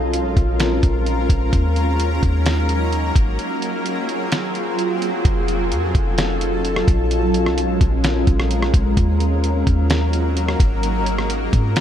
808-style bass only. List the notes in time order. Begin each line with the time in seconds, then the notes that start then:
0.02 C2
0.19 A#1
0.37 A#1
0.83 A#1
1.30 A#1
1.53 D#2
2.23 D#2
3.16 G#1
5.25 F1
5.71 F2
5.95 F1
6.88 A#1
7.46 C2
7.63 A#1
7.81 A#1
8.27 A#1
8.74 A#1
8.97 D#2
9.67 D#2
10.60 G#1
11.53 G#2